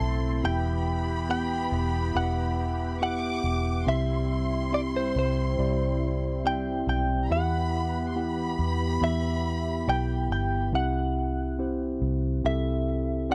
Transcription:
Already playing: analog synth pad A3 C4 E4, tine electric piano C4 E4 A4 E5, clean electric guitar A5, violin section C6
0.00 fingered electric bass B1
0.43 fingered electric bass E1, tine electric piano E3 B3 E4 G4 E5, analog synth pad E3 B3 G4, clean electric guitar G5, violin section B5
1.29 tine electric piano B3 E4 G4 G5, clean electric guitar G5
1.72 fingered electric bass E1
2.15 fingered electric bass E1, tine electric piano B3 E4 G4 E5, clean electric guitar F#5
3.01 tine electric piano B3 E4 G4 E5, clean electric guitar F#5, violin section D6
3.44 fingered electric bass E1
3.86 fingered electric bass C2, tine electric piano C3 C4 E4 G4 E5, analog synth pad G3 C4 E4, clean electric guitar E5, violin section C6
4.72 tine electric piano C4 E4 G4 E5, clean electric guitar D5
4.96 clean electric guitar C5
5.16 fingered electric bass C2, clean electric guitar C5
5.58 fingered electric bass C2, tine electric piano C4 E4 G4 D5
6.45 tine electric piano C4 E4 G4 D5, clean electric guitar G5
6.52 tine electric piano E5
6.87 fingered electric bass B1, clean electric guitar G5
7.23 violin section A#5
7.30 fingered electric bass E2, tine electric piano E3 B3 E4 F#4 E5, analog synth pad E3 B3 G4, clean electric guitar F#5, violin section B5
7.37 tine electric piano G4
8.08 violin section C6
8.16 tine electric piano B3 E4 G4 F#5, violin section B5
8.59 fingered electric bass E2
9.01 fingered electric bass E2, tine electric piano B3 E4 G4 E5, clean electric guitar E5
9.87 fingered electric bass B1, tine electric piano B3 E4 G4 G5, clean electric guitar G5
10.30 fingered electric bass G1, clean electric guitar G5
10.73 fingered electric bass C2, tine electric piano C3 C4 E4 G4 E5, clean electric guitar F#5
11.59 tine electric piano C4 E4 G4 C5
12.02 fingered electric bass C2
12.44 fingered electric bass C2, tine electric piano C4 E4 G4 A4, clean electric guitar E5
13.30 tine electric piano C4 E4 G4 D5, clean electric guitar F#5

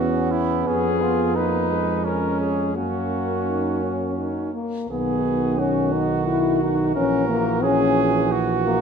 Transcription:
Already playing: bass trombone E2, trombone B3, trumpet F#4
0.00 french horn C#4
0.32 trumpet E4
0.67 bass trombone F2, french horn B3, trumpet C#4 G#4
1.02 trumpet F4
1.35 french horn A#3, trumpet D#4 B4
1.70 french horn G#3
2.04 trumpet C#4 A#4, trombone C#4
2.40 trumpet G#4
2.76 bass trombone F#2, trombone A#3, french horn A#3, trumpet C#4 F#4
3.47 french horn D#4
3.82 french horn C#4
4.18 french horn D#4
4.54 french horn A#3
4.89 bass trombone B1, trombone D#3, french horn B3, trumpet F#4 G#4
5.58 french horn C#4, trumpet F#4
5.92 french horn D#4
6.27 french horn E4
6.61 french horn D#4
6.95 bass trombone A#1, trombone E3, french horn C#4, trumpet A#4
7.29 french horn A#3
7.63 french horn C#4, trumpet G#4
8.32 trumpet F#4
8.65 french horn A#3

